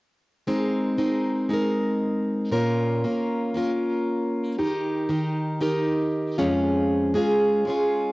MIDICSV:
0, 0, Header, 1, 2, 480
1, 0, Start_track
1, 0, Key_signature, -4, "major"
1, 0, Tempo, 514580
1, 445, Time_signature, 4, 2, 24, 8
1, 7574, End_track
2, 0, Start_track
2, 0, Title_t, "Steel-string acoustic guitar"
2, 0, Program_c, 0, 25
2, 441, Note_on_c, 0, 56, 52
2, 445, Note_on_c, 0, 63, 53
2, 447, Note_on_c, 0, 60, 64
2, 450, Note_on_c, 0, 70, 65
2, 899, Note_off_c, 0, 56, 0
2, 905, Note_off_c, 0, 63, 0
2, 907, Note_off_c, 0, 60, 0
2, 910, Note_on_c, 0, 56, 41
2, 916, Note_on_c, 0, 63, 44
2, 918, Note_on_c, 0, 60, 52
2, 921, Note_off_c, 0, 70, 0
2, 925, Note_on_c, 0, 70, 52
2, 1379, Note_off_c, 0, 56, 0
2, 1390, Note_off_c, 0, 63, 0
2, 1390, Note_on_c, 0, 56, 43
2, 1401, Note_off_c, 0, 60, 0
2, 1402, Note_on_c, 0, 63, 50
2, 1416, Note_on_c, 0, 60, 53
2, 1418, Note_off_c, 0, 70, 0
2, 1431, Note_on_c, 0, 70, 52
2, 2345, Note_on_c, 0, 46, 57
2, 2346, Note_off_c, 0, 56, 0
2, 2347, Note_off_c, 0, 63, 0
2, 2350, Note_off_c, 0, 70, 0
2, 2350, Note_on_c, 0, 58, 64
2, 2351, Note_on_c, 0, 61, 61
2, 2354, Note_on_c, 0, 70, 62
2, 2356, Note_off_c, 0, 60, 0
2, 2360, Note_on_c, 0, 65, 57
2, 2827, Note_off_c, 0, 61, 0
2, 2831, Note_off_c, 0, 65, 0
2, 2832, Note_off_c, 0, 58, 0
2, 2835, Note_off_c, 0, 46, 0
2, 2836, Note_on_c, 0, 58, 49
2, 2838, Note_on_c, 0, 61, 53
2, 2842, Note_on_c, 0, 65, 46
2, 2848, Note_off_c, 0, 70, 0
2, 2852, Note_on_c, 0, 70, 60
2, 3299, Note_off_c, 0, 58, 0
2, 3303, Note_on_c, 0, 58, 51
2, 3304, Note_off_c, 0, 61, 0
2, 3315, Note_on_c, 0, 61, 51
2, 3316, Note_off_c, 0, 65, 0
2, 3328, Note_on_c, 0, 65, 61
2, 3334, Note_off_c, 0, 70, 0
2, 3338, Note_on_c, 0, 70, 54
2, 4269, Note_off_c, 0, 58, 0
2, 4273, Note_off_c, 0, 70, 0
2, 4273, Note_on_c, 0, 51, 60
2, 4274, Note_off_c, 0, 65, 0
2, 4278, Note_off_c, 0, 61, 0
2, 4278, Note_on_c, 0, 67, 64
2, 4282, Note_on_c, 0, 63, 67
2, 4284, Note_on_c, 0, 70, 72
2, 4736, Note_off_c, 0, 51, 0
2, 4747, Note_off_c, 0, 63, 0
2, 4747, Note_on_c, 0, 51, 45
2, 4750, Note_off_c, 0, 67, 0
2, 4756, Note_off_c, 0, 70, 0
2, 4759, Note_on_c, 0, 63, 56
2, 4761, Note_on_c, 0, 67, 59
2, 4767, Note_on_c, 0, 70, 52
2, 5218, Note_off_c, 0, 51, 0
2, 5223, Note_off_c, 0, 63, 0
2, 5229, Note_off_c, 0, 67, 0
2, 5229, Note_on_c, 0, 51, 55
2, 5234, Note_off_c, 0, 70, 0
2, 5235, Note_on_c, 0, 63, 61
2, 5240, Note_on_c, 0, 67, 57
2, 5245, Note_on_c, 0, 70, 55
2, 5949, Note_off_c, 0, 70, 0
2, 5953, Note_on_c, 0, 65, 57
2, 5955, Note_off_c, 0, 67, 0
2, 5956, Note_off_c, 0, 63, 0
2, 5957, Note_off_c, 0, 51, 0
2, 5959, Note_on_c, 0, 68, 54
2, 5960, Note_on_c, 0, 61, 59
2, 5963, Note_on_c, 0, 53, 51
2, 5964, Note_on_c, 0, 41, 46
2, 5964, Note_on_c, 0, 56, 53
2, 6657, Note_off_c, 0, 56, 0
2, 6659, Note_off_c, 0, 61, 0
2, 6661, Note_on_c, 0, 56, 55
2, 6668, Note_off_c, 0, 68, 0
2, 6670, Note_on_c, 0, 61, 50
2, 6672, Note_on_c, 0, 68, 57
2, 6675, Note_off_c, 0, 65, 0
2, 6684, Note_off_c, 0, 41, 0
2, 6684, Note_off_c, 0, 53, 0
2, 6686, Note_on_c, 0, 65, 59
2, 7133, Note_off_c, 0, 56, 0
2, 7137, Note_on_c, 0, 56, 56
2, 7145, Note_off_c, 0, 61, 0
2, 7156, Note_on_c, 0, 61, 50
2, 7162, Note_off_c, 0, 68, 0
2, 7165, Note_off_c, 0, 65, 0
2, 7165, Note_on_c, 0, 68, 55
2, 7179, Note_on_c, 0, 65, 60
2, 7574, Note_off_c, 0, 56, 0
2, 7574, Note_off_c, 0, 61, 0
2, 7574, Note_off_c, 0, 65, 0
2, 7574, Note_off_c, 0, 68, 0
2, 7574, End_track
0, 0, End_of_file